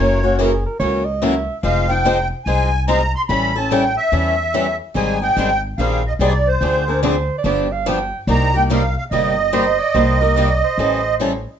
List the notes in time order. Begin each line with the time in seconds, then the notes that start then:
Already playing: F#1 F#3 E4 C#5
0.00 C#3 E3 A#3 C#4 F#4 A#4
0.23 A#3 C#4 F#4
0.39 C#3 E3 F#3 A#3 C#4 E4 F#4 G#4 A#4
0.66 A#4
0.79 C#2 C#3 E3 F#3 A#3 C#4 E4 F#4 A#4 C#5
1.05 D#5
1.22 C#3 E3 F#3 A#3 C#4 E4 F#4 A#4 E5
1.63 F1 F3 G#3 C4 D#4 F4 G#4 C5 F5
1.89 D#4 F4 C5 G5
2.05 F3 G#3 C4 D#4 F4 G#4 C5
2.45 C2 F3 G#3 C4 D#4 F4 G#4 C5 G#5
2.88 F3 G#3 C4 D#4 F4 G#4 C5 A#5
3.15 C6
3.29 A1 E3 G3 C#4 E4 A4 B5
3.56 C#4 E4 A4 A5
3.71 E3 G3 C#4 E4 A4 G5
3.97 E5
4.12 E2 E3 G3 C#4 E4 A4
4.54 E3 G3 C#4 E4 A4
4.95 G#1 D#3 G3 C4 D#4 G#4 G#5
5.22 C4 D#4 G#4 G5
5.37 G#1 D#3 G3 C4 D#4 G#4
5.78 A#1 D#3 G3 C4 D#4 G#4 F5
6.07 D#5
6.19 C2 D#3 G3 C4 D#4 G#4 D5
6.47 C5
6.61 D2 D3 F3 C4 D4 G#4
6.88 C4 D4 G#4 A#4
7.03 D3 F3 C4 D4 G#4 C5
7.38 D5
7.44 G1 D3 F3 B3 D4 G4 D5
7.72 F5
7.86 D3 F3 B3 D4 G4 G5
8.27 C2 C3 G3 A#3 D#4 G4 A#5
8.54 A#3 D#4 G4 G5
8.70 C3 G3 A#3 D#4 G4 F5
8.97 F5
9.11 G1 C3 G3 A#3 D#4 G4 D#5
9.53 C3 G3 A#3 D#4 G4 C5
9.79 D5
9.94 C2 C3 G3 A#3 D#4 G4 C5
10.21 A#3 D#4 G4 A#4
10.37 C3 G3 A#3 D#4 G4 D5
10.64 C5
10.78 A1 E3 G3 C#4 E4 A4
11.20 E3 G3 C#4 E4 A4